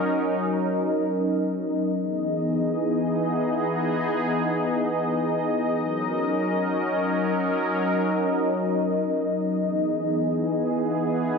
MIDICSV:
0, 0, Header, 1, 2, 480
1, 0, Start_track
1, 0, Tempo, 500000
1, 10927, End_track
2, 0, Start_track
2, 0, Title_t, "Analog synth pad"
2, 0, Program_c, 0, 89
2, 0, Note_on_c, 0, 54, 76
2, 0, Note_on_c, 0, 61, 75
2, 0, Note_on_c, 0, 63, 69
2, 0, Note_on_c, 0, 70, 71
2, 0, Note_on_c, 0, 75, 82
2, 1868, Note_off_c, 0, 75, 0
2, 1870, Note_off_c, 0, 70, 0
2, 1871, Note_off_c, 0, 54, 0
2, 1871, Note_off_c, 0, 61, 0
2, 1871, Note_off_c, 0, 63, 0
2, 1907, Note_on_c, 0, 68, 74
2, 1908, Note_on_c, 0, 52, 79
2, 1908, Note_on_c, 0, 59, 74
2, 1908, Note_on_c, 0, 63, 69
2, 1909, Note_on_c, 0, 75, 86
2, 5527, Note_off_c, 0, 68, 0
2, 5528, Note_off_c, 0, 52, 0
2, 5528, Note_off_c, 0, 59, 0
2, 5565, Note_on_c, 0, 54, 79
2, 5566, Note_on_c, 0, 61, 74
2, 5566, Note_on_c, 0, 70, 71
2, 9185, Note_off_c, 0, 54, 0
2, 9185, Note_off_c, 0, 70, 0
2, 9186, Note_off_c, 0, 61, 0
2, 9223, Note_on_c, 0, 52, 79
2, 9223, Note_on_c, 0, 59, 71
2, 9223, Note_on_c, 0, 68, 72
2, 10927, Note_off_c, 0, 52, 0
2, 10927, Note_off_c, 0, 59, 0
2, 10927, Note_off_c, 0, 63, 0
2, 10927, Note_off_c, 0, 68, 0
2, 10927, Note_off_c, 0, 75, 0
2, 10927, End_track
0, 0, End_of_file